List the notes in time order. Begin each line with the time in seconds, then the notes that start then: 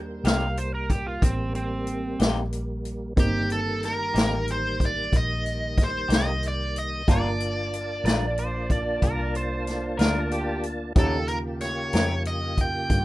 Already playing: D#2 G3 A#3 D4 D#4 A#4
0.24 C2 C3 A#3 D#4 G4 F5, snare, closed hi-hat
0.57 C5, closed hi-hat
0.75 A#4
0.90 G4, kick, closed hi-hat
1.07 F4
1.22 A1 C4, kick, closed hi-hat
1.55 C4, closed hi-hat
1.87 closed hi-hat
2.20 A#1 C3 A#3 D#4 G4, snare, closed hi-hat
2.52 closed hi-hat
2.85 closed hi-hat
3.16 G1 D#3 G3 A#3 C4 D#4 G4, kick, closed hi-hat
3.50 A4, closed hi-hat
3.83 A#4, snare, closed hi-hat
4.14 A1 C3 A#3 D#4 G4, snare, closed hi-hat
4.48 closed hi-hat
4.52 C5
4.80 kick, closed hi-hat
4.85 D5
5.13 A#1, kick, closed hi-hat
5.17 D#5
5.46 closed hi-hat
5.78 kick, snare, closed hi-hat
5.84 C5
6.08 C2 C3 A#3 D#4 G4, snare, closed hi-hat
6.14 D#5
6.43 closed hi-hat
6.48 D5
6.76 D#5, closed hi-hat
7.07 G1 G3 A#3 D4 F4 A#4 D5 A5, kick, closed hi-hat
7.40 closed hi-hat
7.73 closed hi-hat
8.04 A#1 G3 D4 F4 A#4 D5, snare, closed hi-hat
8.38 C5, closed hi-hat
8.70 D5, kick, closed hi-hat
9.02 C2 A#4, kick, closed hi-hat
9.35 C5, closed hi-hat
9.67 snare, closed hi-hat
9.97 D2 G3 D4 F4 A#4, snare, closed hi-hat
10.31 G4, closed hi-hat
10.63 closed hi-hat
10.95 D#2 C#3 D#3 A#3 C#4 D#4 F4 G4 A4 A#4, kick, closed hi-hat
11.28 A#4, closed hi-hat
11.61 C#5, snare, closed hi-hat
11.93 F2 D#3 C#4 G4 A#4, snare, closed hi-hat
12.25 D#5, closed hi-hat
12.58 G5, kick, closed hi-hat
12.90 G2, kick, closed hi-hat